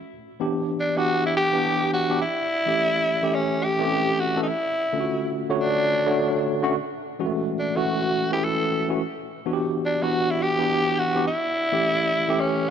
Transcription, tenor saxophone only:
0.80 0.99 D4 medium
0.97 1.25 F#4 loud
1.26 1.36 E4 medium
1.37 1.89 G4 loud
1.93 2.19 F#4 loud
2.22 3.37 E4 loud
3.35 3.65 C#4 medium
3.64 4.21 G4 loud
4.20 4.42 F#4 medium
4.43 4.49 D#4 medium
4.48 5.34 E4 loud
5.61 6.42 D4 loud
7.59 7.78 D4 medium
7.76 8.32 F#4 loud
8.33 8.45 G4 loud
8.44 8.89 A4 loud
9.85 10.04 D4 medium
10.03 10.32 F#4 loud
10.31 10.44 E4 loud
10.42 11.00 G4 loud
10.99 11.27 F#4 loud
11.27 12.42 E4 loud
12.40 12.70 C#4 medium

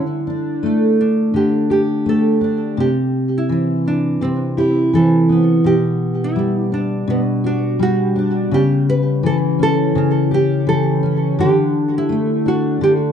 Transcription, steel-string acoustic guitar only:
0.00 1.32 D3 medium
0.27 2.40 D4 soft
0.63 2.05 A3 medium
1.34 2.86 D3 medium
1.70 4.57 G4 medium
2.06 2.87 A3 medium
2.41 2.86 D4 medium
2.77 4.20 C3 medium
3.49 4.92 E3 medium
4.21 5.64 C3 medium
4.57 5.73 E4 medium
4.93 5.74 E3 medium
5.29 6.71 B3 medium
5.64 7.06 B2 medium
6.36 7.79 G3 medium
6.72 8.15 D4 soft
7.08 8.51 B2 medium
7.44 8.60 F#4 medium
7.79 9.23 G3 medium
8.16 8.60 D4 medium
8.51 9.94 C#3 medium
9.23 10.65 E3 medium
9.59 11.02 C#4 medium
9.95 11.47 C#3 medium
10.31 12.12 G4 medium
10.67 11.38 E3 medium
11.03 11.47 C#4 medium
11.39 12.80 D3 medium
12.09 13.12 A3 medium
12.46 13.12 D4 soft
12.81 13.12 D3 medium

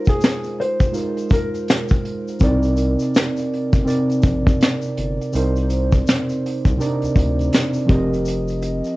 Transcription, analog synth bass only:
2.42 2.96 C2 loud
3.74 3.86 G1 medium
4.24 4.58 A#1 medium
4.98 5.19 G1 medium
5.35 6.03 C2 loud
6.66 6.79 C2 medium
7.03 7.08 D2 soft
7.16 7.50 D2 medium
7.90 8.82 F1 medium

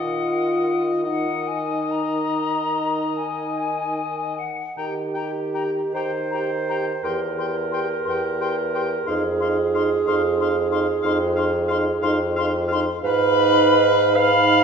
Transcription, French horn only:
0.00 1.07 F4 medium
1.05 4.39 D#4 soft
4.79 4.95 G4 soft
5.16 5.32 G4 soft
5.55 5.71 G4 soft
5.95 6.11 G4 soft
6.33 6.49 G4 soft
6.69 6.85 G4 soft
7.03 7.19 G4 soft
7.37 7.53 G4 soft
7.71 7.87 G4 medium
8.06 8.22 G4 soft
8.39 8.55 G4 soft
8.73 8.89 G4 soft
9.07 9.23 D#4 medium
9.42 9.57 D#4 medium
9.74 9.89 D#4 medium
10.05 10.21 D#4 medium
10.38 10.53 D#4 medium
10.71 10.86 D#4 medium
11.04 11.19 D#4 medium
11.37 11.52 D#4 medium
11.70 11.86 D#4 medium
12.04 12.20 D#4 medium
12.38 12.53 D#4 medium
12.71 12.86 D#4 medium
13.06 14.13 D#4 medium
14.18 14.64 D#4 medium

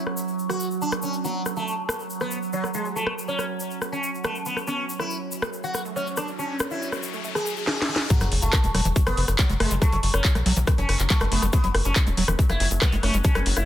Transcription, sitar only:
0.50 0.66 F#4 medium
0.82 0.93 D4 medium
1.03 1.14 C#4 medium
1.24 1.41 F#3 medium
1.57 1.73 A3 medium
2.21 2.38 B3 medium
2.53 2.64 F#3 medium
2.75 2.86 G#3 medium
2.96 3.13 A3 loud
3.28 3.45 C#4 medium
3.92 4.09 C#4 medium
4.25 4.36 A3 medium
4.46 4.57 B3 medium
4.67 4.84 C#4 loud
5.00 5.16 E4 medium
5.64 5.80 F#4 medium
5.96 6.07 C#4 medium
6.17 6.29 D4 medium
6.39 6.56 C#4 loud
6.71 6.88 E4 medium
7.35 7.52 G#4 loud
7.67 7.78 G#4 medium
7.89 8.00 G#4 medium
8.10 8.27 F#3 loud
8.42 8.59 A3 loud
9.07 9.23 B3 medium
9.39 9.50 F#3 medium
9.60 9.71 G#3 medium
9.82 9.98 A3 loud
10.14 10.30 C#4 medium
10.78 10.95 C#4 loud
11.10 11.21 A3 medium
11.32 11.43 B3 medium
11.53 11.70 B3 loud
11.85 12.02 C#4 medium
12.50 12.66 E4 loud
12.82 12.93 B3 medium
13.03 13.14 C#4 medium
13.25 13.41 C#4 loud
13.57 13.65 E4 loud

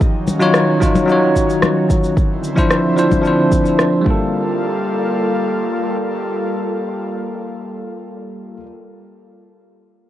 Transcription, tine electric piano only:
0.40 0.78 F#3 medium
0.40 0.78 D#4 medium
0.40 0.79 F4 medium
0.40 0.79 C#5 loud
0.80 1.04 F#3 medium
0.80 1.05 D#4 medium
0.80 1.06 F4 medium
0.80 1.06 C#5 medium
1.06 2.14 F#3 medium
1.06 2.15 D#4 medium
1.10 2.16 F4 medium
1.10 2.17 C#5 medium
2.55 2.94 F3 medium
2.55 2.94 D4 medium
2.55 2.95 E4 medium
2.55 2.95 C5 loud
2.96 3.20 F3 medium
2.96 3.21 D4 medium
2.96 3.22 E4 medium
2.96 3.22 C5 medium
3.21 4.04 F3 medium
3.21 4.05 D4 medium
3.21 4.06 E4 medium
3.28 4.07 C5 medium
4.01 8.56 G3 medium
4.01 8.59 A#3 medium
4.07 8.63 F4 medium
4.07 8.66 A4 medium

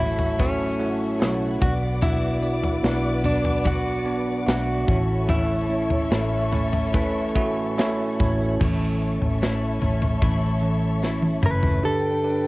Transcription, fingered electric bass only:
0.00 1.21 A1 medium
1.21 1.59 B1 medium
1.62 2.80 B1 medium
2.84 4.43 B1 loud
4.47 4.85 B1 medium
4.88 6.07 A1 medium
6.11 8.16 A1 medium
8.20 8.58 A1 medium
8.61 9.18 A1 medium
9.22 9.78 A1 medium
9.82 10.19 A1 medium
10.22 11.39 A1 loud
11.43 11.80 F#1 medium

